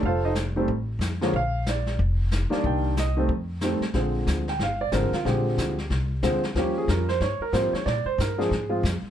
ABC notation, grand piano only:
X:1
M:4/4
L:1/8
Q:"Swing" 1/4=184
K:Bbmix
V:1 name="Grand piano"
[F=Acf] [EAce] z4 z _d | f2 d2 z3 d | g2 e2 z4 | z3 g f d B F |
G4 z4 | G A B c _d B c d | d c B A2 z3 |]
V:2 name="Grand piano" clef=bass
z3 [E,G,=A,C] z3 [D,F,_A,B,] | z6 z [E,G,B,D]- | [E,G,B,D]2 z [E,G,=A,C] z2 [E,G,A,C] z | [D,F,A,C]3 z3 [D,F,A,C] z |
[D,F,A,C]3 z3 [D,F,A,C] z | [F,G,B,_D]3 z3 [F,G,B,C] z | z3 [F,A,CD] z [F,A,CF] z2 |]